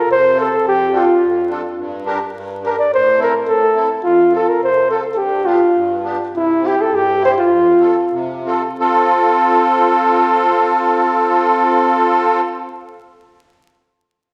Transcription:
0.06 0.49 C3 medium
0.11 0.36 C5 loud
0.34 0.47 C4 medium
0.34 0.48 F4 medium
0.34 0.49 A4 medium
0.40 0.64 A4 medium
0.63 1.05 F2 medium
0.68 0.99 G4 loud
0.92 1.04 D4 medium
0.92 1.05 F4 medium
0.92 1.05 A4 medium
0.97 1.52 F4 medium
1.21 1.63 F2 medium
1.49 1.61 D4 medium
1.49 1.62 F4 medium
1.49 1.62 A4 medium
1.77 2.19 G2 medium
2.05 2.18 D4 medium
2.05 2.19 G4 medium
2.05 2.19 A#4 medium
2.34 2.76 G2 medium
2.63 2.75 D4 medium
2.63 2.76 G4 soft
2.63 2.76 A#4 medium
2.63 2.78 A#4 medium
2.79 2.91 D5 medium
2.93 3.35 A2 medium
2.93 3.20 C5 loud
3.18 3.32 C4 medium
3.18 3.32 E4 medium
3.18 3.32 A4 medium
3.23 3.35 A#4 medium
3.47 3.91 A2 medium
3.47 3.89 A4 loud
3.75 3.89 C4 medium
3.75 3.89 E4 medium
3.75 3.90 A4 medium
4.03 4.47 F2 medium
4.03 4.32 F4 loud
4.31 4.46 C4 medium
4.31 4.46 F4 soft
4.31 4.47 A4 medium
4.36 4.50 A4 medium
4.49 4.63 A#4 medium
4.61 5.04 C3 medium
4.61 4.90 C5 medium
4.89 5.03 C4 medium
4.89 5.04 F4 medium
4.89 5.00 A4 medium
4.89 5.04 A4 medium
5.14 5.61 G2 medium
5.14 5.48 G4 loud
5.14 5.19 A4 medium
5.45 5.60 B3 medium
5.45 5.60 D4 medium
5.45 6.04 F4 medium
5.45 5.60 G4 medium
5.75 6.18 G2 medium
6.03 6.17 B3 medium
6.03 6.18 D4 medium
6.03 6.18 G4 medium
6.33 6.76 C3 medium
6.33 6.68 E4 medium
6.61 6.75 C4 medium
6.61 6.75 E4 medium
6.61 6.76 G4 medium
6.66 6.83 G4 medium
6.81 6.96 A4 medium
6.90 7.35 G2 medium
6.95 7.23 G4 loud
7.20 7.34 C4 medium
7.20 7.34 E4 medium
7.20 7.35 G4 medium
7.25 7.31 C5 loud
7.38 8.28 F4 medium
7.49 7.97 F2 medium
7.79 7.95 C4 medium
7.79 7.96 F4 medium
7.79 7.96 A4 medium
8.12 8.64 C3 medium
8.45 8.62 C4 medium
8.45 8.62 F4 medium
8.45 8.63 A4 medium
8.80 12.41 C4 medium
8.80 12.41 F4 medium
8.80 12.41 A4 medium

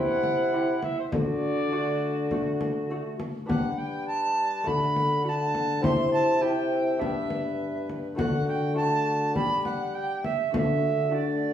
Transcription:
0.00 0.80 C3 medium
0.00 0.84 C3 medium
0.00 0.84 E4 medium
0.00 0.80 F#5 loud
0.24 frame drum soft
0.53 1.08 C4 soft
0.53 1.08 E4 soft
0.53 1.08 G4 medium
0.83 0.98 E5 medium
0.83 frame drum soft
0.99 1.05 C5 medium
1.12 3.16 D3 soft
1.12 3.16 D3 medium
1.12 3.16 F#4 medium
1.12 1.17 G4 medium
1.12 2.87 D5 medium
1.12 frame drum medium
1.72 2.27 A3 soft
1.72 2.27 D4 soft
1.72 2.27 F#4 soft
2.31 2.86 A3 soft
2.31 2.86 D4 soft
2.31 2.87 F#4 soft
2.31 frame drum soft
2.61 frame drum soft
2.90 3.46 A3 soft
2.90 3.45 D4 soft
2.90 3.46 F#4 soft
3.20 frame drum medium
3.46 4.63 G3 soft
3.46 4.63 G3 medium
3.46 4.62 B3 soft
3.46 4.62 D4 soft
3.46 4.63 G4 soft
3.46 3.79 F#5 medium
3.46 frame drum medium
3.50 4.68 B4 medium
3.78 4.07 G5 medium
4.08 4.69 A5 medium
4.64 5.86 D3 medium
4.64 5.80 D3 soft
4.64 5.21 A3 soft
4.64 5.22 D4 soft
4.64 5.24 F#4 soft
4.64 5.24 F#5 medium
4.64 5.25 B5 medium
4.64 frame drum soft
4.96 frame drum soft
5.22 5.81 A3 soft
5.22 5.81 D4 soft
5.22 5.82 F#4 soft
5.22 5.86 F#5 medium
5.22 5.30 B5 medium
5.29 5.83 A5 medium
5.55 frame drum soft
5.81 7.03 C3 medium
5.81 6.98 C3 soft
5.81 6.39 C4 soft
5.81 6.40 E4 soft
5.81 6.41 G4 soft
5.81 6.42 E5 medium
5.81 6.13 C6 medium
5.81 frame drum medium
6.13 6.43 A5 medium
6.40 6.98 C4 soft
6.40 6.99 E4 soft
6.40 6.99 G4 soft
6.40 7.02 E5 medium
6.40 7.01 G5 medium
6.98 8.14 G2 soft
6.98 8.18 G2 medium
6.98 8.13 B3 soft
6.98 8.14 D4 soft
6.98 8.14 G4 soft
6.98 8.16 B4 medium
6.98 7.88 E5 medium
6.98 frame drum medium
7.30 frame drum soft
7.90 frame drum soft
8.15 9.37 D3 medium
8.15 9.32 D3 soft
8.15 8.72 A3 soft
8.15 8.74 D4 soft
8.15 8.75 F#4 medium
8.15 8.75 F#4 soft
8.15 8.45 F#5 medium
8.15 frame drum medium
8.48 8.76 G5 medium
8.74 9.32 A3 soft
8.74 9.32 D4 soft
8.74 9.33 F#4 soft
8.74 9.34 A5 medium
8.78 9.38 F#4 medium
9.33 10.26 G3 medium
9.33 10.22 G3 soft
9.33 10.50 D4 soft
9.33 10.50 G4 soft
9.33 9.95 G4 medium
9.33 9.65 B5 medium
9.33 frame drum soft
9.65 9.96 F#5 medium
9.65 frame drum soft
9.95 10.33 G4 medium
9.95 10.23 G5 medium
10.23 10.53 E5 medium
10.23 frame drum soft
10.51 11.53 D3 soft
10.51 11.53 D3 medium
10.51 11.08 A3 soft
10.51 11.10 D4 soft
10.51 11.11 F#4 soft
10.51 10.60 F5 medium
10.51 frame drum medium
10.55 11.10 F#4 soft
10.59 11.16 E5 medium
11.10 11.53 A3 soft
11.10 11.53 D4 soft
11.10 11.53 F#4 soft
11.14 11.53 F#4 medium
11.14 11.53 D5 medium

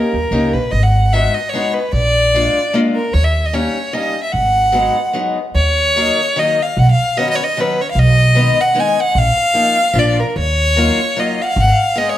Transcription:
0.00 0.14 A#3 soft
0.00 0.14 C#4 soft
0.00 0.14 D#4 soft
0.00 0.15 G4 soft
0.00 0.55 A#4 medium
0.13 0.30 D#2 soft
0.31 0.52 C#2 medium
0.31 0.55 A#3 soft
0.31 0.55 C#4 soft
0.31 0.56 D#4 soft
0.31 0.56 G4 soft
0.53 0.71 A#1 medium
0.53 0.73 B4 medium
0.71 1.26 G#1 medium
0.71 0.85 D#5 medium
0.83 1.14 F#5 medium
1.13 1.36 G#3 soft
1.13 1.37 B3 soft
1.13 1.37 D#4 soft
1.13 1.37 F#4 medium
1.13 1.36 E5 medium
1.34 1.51 D#5 medium
1.49 1.75 C#5 medium
1.53 1.77 G#3 soft
1.53 1.77 B3 soft
1.53 1.77 D#4 soft
1.53 1.77 F#4 medium
1.74 1.93 B4 medium
1.92 2.46 A#1 medium
1.92 2.74 D5 loud
2.34 2.57 G#3 medium
2.34 2.58 A#3 soft
2.34 2.58 D4 soft
2.34 2.58 F4 medium
2.73 2.96 G#3 soft
2.73 2.97 A#3 medium
2.73 2.97 D4 soft
2.73 2.97 F4 medium
2.95 3.15 A#4 medium
3.14 3.66 D#2 medium
3.14 3.26 C#5 medium
3.24 3.47 E5 medium
3.46 3.55 D#5 medium
3.53 3.76 G3 medium
3.53 3.76 A#3 soft
3.53 3.76 C#4 soft
3.53 3.77 D#4 medium
3.53 3.95 C#5 medium
3.93 4.15 G3 medium
3.93 4.16 A#3 soft
3.93 4.16 C#4 soft
3.93 4.16 D#4 medium
3.93 4.23 D#5 medium
4.23 4.34 E5 medium
4.32 4.86 G#1 medium
4.32 5.14 F#5 medium
4.72 4.95 F#3 medium
4.72 4.96 G#3 medium
4.72 4.96 B3 soft
4.72 4.96 D#4 medium
5.13 5.37 F#3 soft
5.13 5.37 G#3 soft
5.13 5.38 B3 soft
5.13 5.38 D#4 medium
5.55 6.08 D#2 medium
5.55 6.40 C#5 loud
5.96 6.19 D#3 soft
5.96 6.19 F#3 soft
5.96 6.19 A#3 medium
5.96 6.20 D#4 medium
6.36 6.59 D#3 medium
6.36 6.59 F#3 soft
6.36 6.59 A#3 soft
6.36 6.60 D#4 medium
6.36 6.64 D#5 medium
6.62 6.80 F5 medium
6.77 6.92 B1 medium
6.77 6.90 F#5 medium
6.91 7.19 F5 medium
7.17 7.40 D#3 medium
7.17 7.39 F#3 soft
7.17 7.40 B3 medium
7.17 7.40 C#4 medium
7.17 7.29 D#5 medium
7.29 7.37 D#5 medium
7.35 7.45 C#5 medium
7.44 7.62 D#5 medium
7.57 7.79 D#3 medium
7.57 7.79 F#3 soft
7.57 7.79 B3 soft
7.57 7.80 C#4 medium
7.57 7.83 B4 medium
7.81 7.91 C#5 medium
7.91 8.47 B1 medium
7.91 8.00 F5 medium
7.99 8.62 D#5 loud
8.35 8.57 D#3 medium
8.35 8.57 G#3 soft
8.35 8.57 B3 soft
8.35 8.58 D#4 medium
8.60 8.81 F#5 medium
8.74 8.96 D#3 soft
8.74 8.97 G#3 soft
8.74 8.97 B3 soft
8.74 8.97 D#4 medium
8.80 9.02 G#5 medium
9.00 9.20 F#5 loud
9.15 9.29 A#1 medium
9.15 10.00 F5 loud
9.54 9.76 F3 soft
9.54 9.76 A#3 soft
9.54 9.77 D#4 soft
9.54 9.77 F4 soft
9.93 10.21 A#1 medium
9.93 10.17 F3 medium
9.93 10.17 A#3 soft
9.93 10.18 D4 soft
9.93 10.18 F4 medium
9.99 10.21 D5 medium
10.20 10.37 A#4 medium
10.36 10.89 D#2 medium
10.36 11.21 C#5 loud
10.76 10.99 F#3 soft
10.76 10.99 A#3 medium
10.76 10.99 D#4 soft
10.76 11.00 F4 medium
11.16 11.39 F#3 medium
11.16 11.39 A#3 soft
11.16 11.39 D#4 soft
11.16 11.39 F4 medium
11.16 11.43 D#5 medium
11.42 11.45 F5 medium
11.42 11.50 F#5 medium
11.49 11.61 F5 medium
11.56 11.71 G#1 medium
11.56 11.71 F#5 loud
11.69 11.99 F5 medium
11.96 12.18 G#3 medium
11.96 12.18 B3 soft
11.96 12.18 D#4 soft
11.96 12.18 G#4 medium
11.96 12.11 D#5 medium
12.09 12.18 C#5 medium

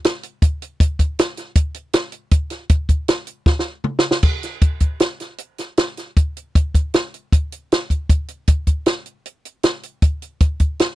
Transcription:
0.04 snare loud
0.04 closed hi-hat medium
0.23 closed hi-hat medium
0.42 kick loud
0.42 closed hi-hat medium
0.62 closed hi-hat medium
0.80 kick loud
0.80 closed hi-hat loud
0.99 kick medium
0.99 closed hi-hat medium
1.19 snare loud
1.19 closed hi-hat loud
1.37 snare soft
1.37 closed hi-hat medium
1.55 kick loud
1.55 closed hi-hat loud
1.74 closed hi-hat medium
1.93 snare loud
1.93 closed hi-hat loud
2.12 closed hi-hat medium
2.31 kick loud
2.31 closed hi-hat loud
2.50 snare soft
2.50 closed hi-hat medium
2.69 kick loud
2.69 closed hi-hat medium
2.89 kick medium
2.89 closed hi-hat medium
3.08 snare loud
3.08 closed hi-hat medium
3.27 closed hi-hat medium
3.46 kick loud
3.46 snare medium
3.59 snare medium
3.84 mid tom medium
3.99 snare medium
4.11 snare medium
4.23 kick loud
4.23 crash medium
4.43 snare soft
4.43 closed hi-hat medium
4.61 kick loud
4.61 closed hi-hat medium
4.80 kick medium
4.80 closed hi-hat medium
5.00 snare loud
5.00 closed hi-hat medium
5.20 snare soft
5.20 closed hi-hat medium
5.38 closed hi-hat medium
5.58 snare soft
5.58 closed hi-hat medium
5.77 snare loud
5.77 closed hi-hat medium
5.97 snare soft
5.97 closed hi-hat medium
6.17 kick medium
6.17 closed hi-hat medium
6.37 closed hi-hat medium
6.55 kick loud
6.55 closed hi-hat medium
6.75 kick medium
6.75 closed hi-hat medium
6.94 snare loud
6.94 closed hi-hat medium
7.14 closed hi-hat soft
7.32 kick medium
7.32 closed hi-hat medium
7.52 closed hi-hat medium
7.72 snare loud
7.72 closed hi-hat medium
7.90 kick medium
7.90 closed hi-hat medium
8.09 kick loud
8.09 closed hi-hat medium
8.28 closed hi-hat medium
8.47 kick medium
8.47 closed hi-hat medium
8.67 kick medium
8.67 closed hi-hat medium
8.86 snare loud
8.86 closed hi-hat medium
9.06 closed hi-hat medium
9.26 closed hi-hat medium
9.45 closed hi-hat medium
9.63 snare loud
9.63 closed hi-hat medium
9.83 closed hi-hat medium
10.02 kick medium
10.02 closed hi-hat medium
10.22 closed hi-hat medium
10.40 kick loud
10.40 closed hi-hat medium
10.60 kick medium
10.60 closed hi-hat medium
10.79 snare medium
10.79 closed hi-hat medium

